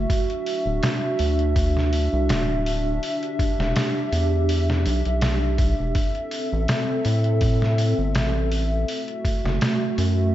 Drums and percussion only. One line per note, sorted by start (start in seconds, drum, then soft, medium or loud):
0.10 kick loud
0.10 open hi-hat medium
0.30 closed hi-hat soft
0.46 open hi-hat medium
0.83 snare loud
0.83 open hi-hat medium
1.19 open hi-hat medium
1.39 closed hi-hat soft
1.56 kick loud
1.56 open hi-hat medium
1.77 snare soft
1.93 open hi-hat medium
2.29 snare loud
2.29 open hi-hat medium
2.66 open hi-hat medium
3.03 open hi-hat medium
3.23 closed hi-hat soft
3.39 kick medium
3.39 open hi-hat medium
3.60 snare medium
3.76 snare loud
3.76 open hi-hat medium
4.12 open hi-hat medium
4.49 open hi-hat medium
4.70 snare medium
4.86 open hi-hat medium
5.05 closed hi-hat soft
5.21 snare loud
5.21 open hi-hat medium
5.58 kick medium
5.58 open hi-hat medium
5.95 kick loud
5.95 open hi-hat medium
6.15 closed hi-hat soft
6.31 open hi-hat medium
6.68 snare loud
6.68 open hi-hat medium
7.05 open hi-hat medium
7.24 closed hi-hat soft
7.41 kick loud
7.41 open hi-hat medium
7.62 snare soft
7.78 open hi-hat medium
8.15 snare loud
8.15 open hi-hat medium
8.52 open hi-hat medium
8.88 open hi-hat medium
9.08 closed hi-hat soft
9.25 kick medium
9.25 open hi-hat medium
9.45 snare soft
9.61 snare loud
9.61 open hi-hat medium
9.98 open hi-hat medium